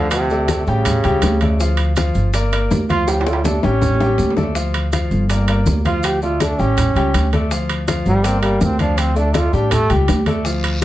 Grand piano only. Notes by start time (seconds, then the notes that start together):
Already playing: F3 F4 F5
0.31 A3 A4 D5
0.50 A3 A4 D5
0.68 G3 G4 G5
1.04 G3 G4 G5
1.42 A3 A4 D5
1.60 F3 F4 F5
1.97 F3 F4 F5
2.34 A#3 A#4 D5
2.52 A#3 A#4 D5
2.89 F3 F4 F5
3.27 A3 A4 D5
3.45 A3 A4 D5
3.63 G3 G4 G5
4.01 G3 G4 G5
4.36 A3 A4 D5
4.55 F3 F4 F5
4.93 F3 F4 F5
5.30 A#3 A#4 D5
5.48 A#3 A#4 D5
5.86 F3 F4 F5
6.23 A3 A4 D5
6.41 A3 A4 D5
6.60 G3 G4 G5
6.96 G3 G4 G5
7.33 A3 A4 D5
7.52 F3 F4 F5
7.88 F3 F4 F5
8.25 A#3 A#4 D5
8.43 A#3 A#4 D5
8.80 F3 F4 F5
9.16 A3 A4 D5
9.34 A3 A4 D5
9.53 G3 G4 G5
9.90 G3 G4 G5
10.27 A3 A4 D5
10.46 F3 F4 F5